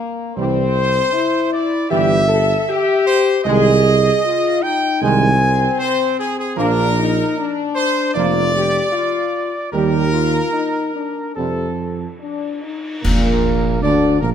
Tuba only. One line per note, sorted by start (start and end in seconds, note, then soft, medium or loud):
0.37 1.01 C2 loud
1.92 2.56 G1 medium
3.46 4.11 C2 loud
5.02 5.67 C2 loud
6.58 7.24 A#1 loud
8.15 8.81 F1 medium
9.73 10.40 D#2 loud
11.37 12.07 F2 medium
13.04 13.84 A#1 medium
13.83 14.22 D2 loud
14.22 14.31 A#1 loud